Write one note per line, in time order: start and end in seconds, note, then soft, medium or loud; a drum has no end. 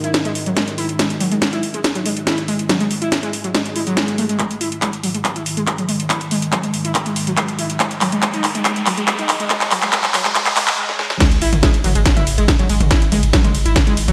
0.00 4.38 G#2 medium
0.00 4.38 D#3 medium
0.00 0.11 E4 loud
0.00 closed hi-hat medium
0.14 snare loud
0.14 closed hi-hat medium
0.25 0.30 G#3 loud
0.25 closed hi-hat soft
0.35 open hi-hat loud
0.46 0.49 F#3 loud
0.46 closed hi-hat soft
0.57 0.60 G#3 loud
0.57 snare loud
0.57 closed hi-hat medium
0.68 closed hi-hat soft
0.78 0.86 E4 loud
0.78 open hi-hat medium
0.89 closed hi-hat soft
0.99 1.04 G#3 loud
0.99 snare loud
0.99 closed hi-hat medium
1.10 closed hi-hat soft
1.20 1.24 F#3 loud
1.20 open hi-hat medium
1.32 1.34 G#3 loud
1.32 closed hi-hat medium
1.42 snare loud
1.42 closed hi-hat medium
1.53 1.60 E4 loud
1.53 closed hi-hat soft
1.63 open hi-hat medium
1.74 1.79 G#3 medium
1.74 closed hi-hat soft
1.84 snare loud
1.84 closed hi-hat medium
1.95 1.98 F#3 loud
1.95 closed hi-hat medium
2.06 2.09 G#3 loud
2.06 open hi-hat loud
2.17 closed hi-hat medium
2.27 2.35 E4 loud
2.27 snare loud
2.27 closed hi-hat medium
2.38 closed hi-hat soft
2.48 2.53 G#3 loud
2.48 open hi-hat medium
2.59 closed hi-hat medium
2.69 2.72 F#3 medium
2.69 snare loud
2.69 closed hi-hat medium
2.80 2.83 G#3 loud
2.80 closed hi-hat soft
2.91 open hi-hat loud
3.02 3.09 E4 loud
3.02 closed hi-hat medium
3.12 snare loud
3.12 closed hi-hat medium
3.23 3.28 G#3 loud
3.23 closed hi-hat soft
3.33 open hi-hat medium
3.44 3.47 F#3 loud
3.44 closed hi-hat medium
3.54 3.58 G#3 loud
3.54 snare loud
3.54 closed hi-hat medium
3.54 swell medium
3.66 closed hi-hat medium
3.76 3.81 E4 medium
3.76 open hi-hat loud
3.87 3.94 F#3 loud
3.87 closed hi-hat medium
3.97 4.00 G#3 medium
3.97 snare loud
3.97 closed hi-hat medium
4.08 closed hi-hat medium
4.18 4.23 A3 medium
4.18 open hi-hat medium
4.29 4.36 G#3 medium
4.29 closed hi-hat medium
4.39 10.78 G#2 medium
4.39 10.78 D#3 medium
4.39 kick loud
4.39 clap soft
4.39 closed hi-hat loud
4.39 riser medium
4.51 closed hi-hat medium
4.61 4.68 E4 loud
4.61 open hi-hat loud
4.72 closed hi-hat medium
4.82 4.87 G#3 loud
4.82 kick loud
4.82 clap medium
4.82 closed hi-hat medium
4.93 closed hi-hat medium
5.03 5.06 F#3 loud
5.03 open hi-hat medium
5.14 5.17 G#3 medium
5.14 closed hi-hat medium
5.25 kick loud
5.25 clap soft
5.25 closed hi-hat medium
5.36 5.43 E4 loud
5.36 closed hi-hat medium
5.46 open hi-hat loud
5.57 5.62 G#3 loud
5.57 closed hi-hat medium
5.67 kick loud
5.67 clap medium
5.67 closed hi-hat medium
5.78 5.81 F#3 loud
5.78 closed hi-hat medium
5.89 5.92 G#3 loud
5.89 open hi-hat medium
6.00 closed hi-hat medium
6.10 6.18 E4 loud
6.10 kick loud
6.10 clap medium
6.10 closed hi-hat medium
6.21 closed hi-hat medium
6.31 6.36 G#3 loud
6.31 open hi-hat loud
6.42 closed hi-hat medium
6.52 6.56 F#3 loud
6.52 kick loud
6.52 clap medium
6.52 closed hi-hat medium
6.63 6.66 G#3 loud
6.63 closed hi-hat soft
6.74 open hi-hat medium
6.85 6.92 E4 medium
6.85 closed hi-hat medium
6.95 kick loud
6.95 clap medium
6.95 closed hi-hat loud
7.06 7.11 G#3 loud
7.06 closed hi-hat medium
7.16 open hi-hat loud
7.27 7.30 F#3 loud
7.27 closed hi-hat medium
7.37 7.41 G#3 loud
7.37 kick loud
7.37 clap medium
7.37 closed hi-hat loud
7.48 closed hi-hat medium
7.59 7.66 E4 loud
7.59 open hi-hat medium
7.70 closed hi-hat medium
7.80 7.85 G#3 medium
7.80 kick loud
7.80 clap medium
7.80 closed hi-hat loud
7.91 closed hi-hat medium
8.01 8.04 F#3 medium
8.01 clap medium
8.01 open hi-hat loud
8.12 8.15 G#3 loud
8.12 closed hi-hat medium
8.22 kick loud
8.22 clap medium
8.22 closed hi-hat medium
8.34 8.41 D#4 loud
8.34 closed hi-hat medium
8.44 clap medium
8.44 open hi-hat loud
8.55 8.60 G#3 medium
8.55 closed hi-hat medium
8.65 8.70 G#3 loud
8.65 kick loud
8.65 clap medium
8.65 closed hi-hat medium
8.76 closed hi-hat medium
8.86 8.90 F#3 medium
8.86 clap medium
8.86 open hi-hat loud
8.97 9.00 G#3 loud
8.97 closed hi-hat medium
9.08 kick loud
9.08 clap medium
9.08 closed hi-hat loud
9.19 9.26 D#4 medium
9.19 closed hi-hat medium
9.29 clap medium
9.29 open hi-hat loud
9.40 9.45 G#3 medium
9.40 closed hi-hat medium
9.50 9.55 G#3 loud
9.50 kick loud
9.50 clap loud
9.50 closed hi-hat medium
9.61 clap medium
9.61 closed hi-hat medium
9.71 9.75 F#3 loud
9.71 clap medium
9.71 open hi-hat loud
9.82 9.85 G#3 loud
9.82 clap medium
9.82 closed hi-hat medium
9.93 9.98 G#3 loud
9.93 kick loud
9.93 clap loud
9.93 closed hi-hat medium
10.04 clap medium
10.04 closed hi-hat soft
10.14 10.17 F#3 loud
10.14 clap loud
10.14 open hi-hat loud
10.25 10.28 G#3 loud
10.25 clap medium
10.25 closed hi-hat soft
10.35 10.40 G#3 loud
10.35 kick loud
10.35 clap loud
10.35 closed hi-hat medium
10.46 clap medium
10.46 closed hi-hat medium
10.57 10.62 G#3 loud
10.57 clap loud
10.57 open hi-hat loud
10.68 clap loud
10.68 closed hi-hat medium
10.78 10.83 G#3 loud
10.89 snare medium
10.99 11.04 G#3 loud
10.99 snare medium
11.10 snare medium
11.20 14.13 G#2 medium
11.20 14.13 D#3 medium
11.20 11.24 G#3 loud
11.20 kick loud
11.20 snare loud
11.20 closed hi-hat loud
11.20 mid tom medium
11.20 crash loud
11.20 ride medium
11.20 sub drop medium
11.31 closed hi-hat medium
11.31 ride medium
11.42 11.52 G#1 loud
11.42 11.49 E4 loud
11.42 open hi-hat loud
11.42 ride medium
11.53 11.63 G#1 medium
11.53 closed hi-hat medium
11.53 mid tom medium
11.53 ride medium
11.63 11.68 G#3 loud
11.63 kick loud
11.63 snare loud
11.63 closed hi-hat loud
11.63 ride medium
11.74 closed hi-hat medium
11.74 ride medium
11.84 11.95 G#1 loud
11.84 11.87 F#3 loud
11.84 open hi-hat loud
11.84 mid tom medium
11.84 ride medium
11.95 12.05 G#1 medium
11.95 11.98 G#3 loud
11.95 closed hi-hat medium
11.95 ride medium
12.06 kick loud
12.06 snare loud
12.06 closed hi-hat loud
12.06 ride medium
12.16 12.24 E4 loud
12.16 closed hi-hat medium
12.16 mid tom medium
12.16 ride medium
12.27 12.37 G#1 medium
12.27 open hi-hat loud
12.27 ride medium
12.38 12.48 G#1 medium
12.38 12.43 G#3 loud
12.38 closed hi-hat medium
12.38 ride medium
12.48 kick loud
12.48 snare loud
12.48 closed hi-hat loud
12.48 mid tom medium
12.48 ride medium
12.59 12.62 F#3 loud
12.59 closed hi-hat medium
12.59 ride medium
12.69 12.80 G#1 loud
12.69 12.73 G#3 loud
12.69 open hi-hat medium
12.69 ride medium
12.80 12.91 G#1 medium
12.80 closed hi-hat medium
12.80 mid tom medium
12.80 ride medium
12.91 12.98 E4 loud
12.91 kick loud
12.91 snare loud
12.91 closed hi-hat loud
12.91 ride medium
13.02 closed hi-hat medium
13.02 ride medium
13.12 13.22 G#1 loud
13.12 13.17 G#3 loud
13.12 open hi-hat loud
13.12 mid tom medium
13.12 ride medium
13.23 13.33 G#1 medium
13.23 closed hi-hat medium
13.23 ride medium
13.33 13.36 F#3 loud
13.33 kick loud
13.33 snare loud
13.33 closed hi-hat loud
13.33 ride medium
13.44 13.47 G#3 loud
13.44 closed hi-hat medium
13.44 mid tom medium
13.44 ride medium
13.54 13.65 G#1 loud
13.54 open hi-hat medium
13.54 ride medium
13.65 13.76 G#1 medium
13.65 13.73 E4 loud
13.65 closed hi-hat medium
13.65 ride medium
13.76 kick loud
13.76 snare loud
13.76 closed hi-hat loud
13.76 mid tom medium
13.76 ride medium
13.87 13.92 G#3 loud
13.87 closed hi-hat medium
13.87 ride medium
13.97 14.07 G#1 medium
13.97 open hi-hat loud
13.97 ride medium
14.08 14.13 G#1 medium
14.08 14.11 F#3 loud
14.08 closed hi-hat medium
14.08 mid tom medium
14.08 ride medium